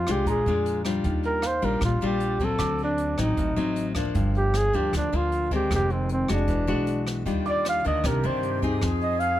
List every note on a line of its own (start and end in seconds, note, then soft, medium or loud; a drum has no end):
0.00 0.13 F4 medium
0.07 0.26 C2 medium
0.07 0.43 G#3 medium
0.07 0.43 D4 medium
0.07 0.44 F4 medium
0.07 cross-stick medium
0.07 closed hi-hat soft
0.11 0.29 G4 medium
0.26 0.48 A#1 medium
0.26 1.03 A#2 soft
0.26 1.06 A#5 soft
0.26 kick medium
0.26 closed hi-hat soft
0.30 0.83 G#4 medium
0.46 1.00 F2 medium
0.46 0.82 G#3 medium
0.46 0.83 D4 medium
0.46 0.83 F4 medium
0.46 closed hi-hat soft
0.66 closed hi-hat soft
0.85 1.42 G3 medium
0.85 1.42 D4 medium
0.85 1.42 F4 medium
0.85 cross-stick soft
0.85 closed hi-hat soft
1.04 1.59 D#2 medium
1.04 1.80 D#3 medium
1.04 kick medium
1.04 closed hi-hat soft
1.23 1.48 A#4 medium
1.23 closed hi-hat soft
1.42 2.22 F5 medium
1.42 cross-stick medium
1.42 closed hi-hat soft
1.46 1.66 C5 loud
1.62 1.81 A#1 medium
1.62 1.98 G3 medium
1.62 1.98 D4 medium
1.62 1.99 F4 medium
1.62 1.83 A#4 medium
1.62 closed hi-hat soft
1.81 2.00 A#1 medium
1.81 2.58 A#2 soft
1.81 2.06 F4 medium
1.81 kick medium
1.81 cross-stick medium
1.81 closed hi-hat soft
2.01 2.56 A#1 medium
2.01 2.38 G3 medium
2.01 2.38 D4 medium
2.01 2.38 F4 medium
2.01 closed hi-hat soft
2.05 2.46 G4 medium
2.20 closed hi-hat soft
2.39 3.15 F#3 medium
2.39 3.15 C4 medium
2.39 kick medium
2.39 closed hi-hat soft
2.45 2.81 A4 medium
2.59 3.14 D2 medium
2.59 3.35 D3 medium
2.59 3.38 D6 soft
2.59 kick medium
2.59 cross-stick medium
2.59 closed hi-hat soft
2.78 closed hi-hat soft
2.84 3.18 D4 medium
2.98 closed hi-hat soft
3.18 3.36 A1 medium
3.18 3.54 F#3 soft
3.18 3.54 C4 medium
3.18 3.54 D#4 medium
3.18 3.93 D#4 medium
3.18 cross-stick medium
3.18 closed hi-hat soft
3.37 3.56 A1 medium
3.37 4.14 A2 medium
3.37 kick medium
3.37 closed hi-hat soft
3.56 4.11 A1 medium
3.56 3.92 F#3 medium
3.56 3.93 C4 medium
3.56 3.93 D#4 medium
3.56 closed hi-hat soft
3.76 closed hi-hat soft
3.95 4.71 F3 soft
3.95 4.71 A#3 medium
3.95 4.71 D4 medium
3.95 kick soft
3.95 cross-stick medium
3.95 closed hi-hat soft
4.14 4.70 G1 medium
4.14 4.91 G2 medium
4.14 kick medium
4.14 closed hi-hat soft
4.35 4.58 G4 loud
4.35 closed hi-hat soft
4.54 4.76 G#4 loud
4.54 cross-stick medium
4.54 closed hi-hat soft
4.73 4.92 D2 medium
4.73 5.09 F3 medium
4.73 5.10 A#3 medium
4.73 5.10 D4 medium
4.73 4.94 G4 medium
4.73 closed hi-hat soft
4.93 5.11 D2 medium
4.93 5.69 D3 medium
4.93 5.17 D4 medium
4.93 kick medium
4.93 cross-stick medium
4.93 closed hi-hat soft
5.13 5.67 D2 medium
5.13 5.48 F3 medium
5.13 5.49 A#3 medium
5.13 5.49 D4 medium
5.13 5.53 F4 medium
5.13 closed hi-hat soft
5.32 closed hi-hat soft
5.51 6.26 D#3 medium
5.51 6.26 G#3 medium
5.51 6.27 C4 medium
5.51 5.71 G4 medium
5.51 kick medium
5.51 closed hi-hat soft
5.71 6.25 F1 medium
5.71 6.47 F2 medium
5.71 5.93 G4 medium
5.71 kick medium
5.71 cross-stick medium
5.71 closed hi-hat soft
5.90 6.11 C4 medium
5.90 closed hi-hat soft
6.09 6.29 C4 medium
6.09 closed hi-hat soft
6.28 6.49 F1 medium
6.28 6.65 G#3 medium
6.28 6.65 D4 medium
6.28 6.65 F#4 medium
6.28 cross-stick medium
6.28 closed hi-hat soft
6.33 7.05 D4 medium
6.48 6.70 E1 medium
6.48 7.24 E3 medium
6.48 kick medium
6.48 closed hi-hat soft
6.67 7.23 B1 medium
6.67 7.23 G#3 medium
6.67 7.23 D4 medium
6.67 7.23 F#4 medium
6.67 closed hi-hat soft
6.87 closed hi-hat soft
7.07 cross-stick medium
7.07 closed hi-hat soft
7.26 7.81 D#2 medium
7.26 7.84 D#3 medium
7.26 7.81 G3 soft
7.26 7.82 D4 soft
7.26 7.82 F4 medium
7.26 8.01 F4 medium
7.26 kick medium
7.26 closed hi-hat soft
7.45 7.66 D5 medium
7.45 8.20 D6 soft
7.45 closed hi-hat soft
7.65 7.85 F5 loud
7.65 cross-stick medium
7.65 closed hi-hat soft
7.84 8.06 D2 medium
7.84 8.21 D#3 medium
7.84 8.21 A#3 medium
7.84 8.21 D4 medium
7.84 8.08 D#5 medium
7.84 closed hi-hat soft
8.04 8.26 C2 medium
8.04 8.80 C3 medium
8.04 8.76 G4 medium
8.04 8.28 A#4 medium
8.04 kick medium
8.04 cross-stick medium
8.04 closed hi-hat soft
8.23 8.79 G2 medium
8.23 8.59 D#3 medium
8.23 8.60 A#3 medium
8.23 8.60 D4 medium
8.23 8.64 C5 medium
8.23 closed hi-hat soft
8.43 closed hi-hat soft
8.62 9.37 C4 medium
8.62 9.38 D#4 medium
8.62 9.38 G#4 medium
8.62 kick soft
8.62 closed hi-hat soft
8.78 8.83 A#4 medium
8.78 cross-stick medium
8.78 closed hi-hat soft
8.82 9.37 F2 medium
8.82 9.40 F3 medium
8.82 9.40 G#4 loud
8.82 kick medium
9.01 9.21 D#5 medium
9.01 closed hi-hat soft
9.20 9.40 F5 loud
9.20 closed hi-hat soft